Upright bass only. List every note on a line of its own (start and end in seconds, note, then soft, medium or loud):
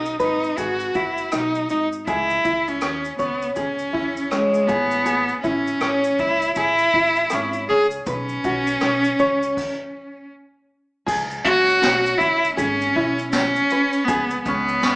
0.00 0.14 B1 medium
0.20 0.51 G#1 medium
0.58 0.89 G#1 medium
0.95 1.26 F#1 medium
1.33 1.64 B1 medium
1.71 2.01 G#1 medium
2.07 2.38 C#2 loud
2.45 2.82 C#2 medium
2.82 3.13 D#2 medium
3.19 3.50 C#2 medium
3.57 3.95 C#2 medium
3.95 4.56 E2 medium
4.70 5.31 A1 medium
5.44 5.75 A1 medium
5.81 6.12 A1 medium
6.19 6.50 C#2 medium
6.56 6.87 A1 medium
6.94 7.25 A1 medium
7.32 7.63 G#1 loud
7.70 8.01 C#2 medium
8.07 8.38 B1 loud
8.44 8.75 B1 loud
8.82 9.13 B1 medium
9.20 9.51 C#2 medium
11.08 11.39 C#2 medium
11.46 11.76 C#2 medium
11.84 12.14 B1 medium
12.21 12.51 C#2 medium
12.59 12.89 G#1 medium
12.96 13.57 B1 medium
14.08 14.39 C#2 medium
14.46 14.77 C#2 loud
14.84 14.96 G#1 medium